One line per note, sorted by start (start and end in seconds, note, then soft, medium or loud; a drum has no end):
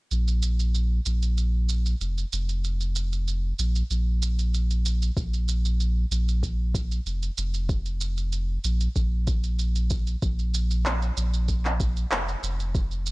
0.11 1.00 A#1 medium
0.11 shaker soft
0.28 shaker soft
0.43 shaker medium
0.59 shaker soft
0.75 shaker soft
1.06 1.95 A#1 medium
1.06 shaker medium
1.23 shaker soft
1.37 shaker soft
1.69 shaker medium
1.86 shaker soft
2.01 2.25 F1 medium
2.01 shaker soft
2.18 shaker soft
2.33 3.53 F1 medium
2.33 shaker medium
2.49 shaker soft
2.64 shaker soft
2.81 shaker soft
2.95 shaker medium
3.13 shaker soft
3.28 shaker soft
3.59 3.83 A#1 medium
3.59 shaker medium
3.75 shaker soft
3.90 5.11 A#1 medium
3.90 shaker soft
4.22 shaker medium
4.39 shaker soft
4.54 shaker soft
4.71 shaker soft
4.85 shaker medium
5.02 shaker soft
5.16 6.05 A#1 medium
5.16 kick loud
5.16 shaker soft
5.34 shaker soft
5.48 shaker medium
5.65 shaker soft
5.80 shaker soft
6.11 7.00 A#1 medium
6.11 shaker medium
6.28 shaker soft
6.43 kick medium
6.43 shaker soft
6.75 kick medium
6.75 shaker medium
6.91 shaker soft
7.06 7.30 F1 medium
7.06 shaker soft
7.23 shaker soft
7.38 8.58 F1 medium
7.38 shaker medium
7.54 shaker soft
7.69 kick loud
7.69 shaker soft
7.86 shaker soft
8.01 shaker medium
8.17 shaker soft
8.32 shaker soft
8.64 8.88 A#1 medium
8.64 shaker medium
8.81 shaker soft
8.96 10.16 A#1 medium
8.96 kick medium
8.96 shaker soft
9.27 kick loud
9.27 shaker medium
9.44 shaker soft
9.59 shaker soft
9.76 shaker soft
9.90 kick loud
9.90 shaker medium
10.07 shaker soft
10.22 11.11 A#1 medium
10.22 kick loud
10.22 shaker soft
10.39 shaker soft
10.54 shaker medium
10.71 shaker soft
10.86 clap medium
10.86 shaker soft
11.02 shaker soft
11.17 12.05 A#1 medium
11.17 shaker medium
11.34 shaker soft
11.48 kick medium
11.48 shaker soft
11.65 clap soft
11.65 shaker soft
11.80 kick loud
11.80 shaker medium
11.96 shaker soft
12.11 12.35 F1 medium
12.11 clap loud
12.11 shaker soft
12.28 shaker soft
12.43 13.11 F1 medium
12.43 shaker medium
12.60 shaker soft
12.75 kick loud
12.75 shaker soft
12.91 shaker soft
13.06 shaker medium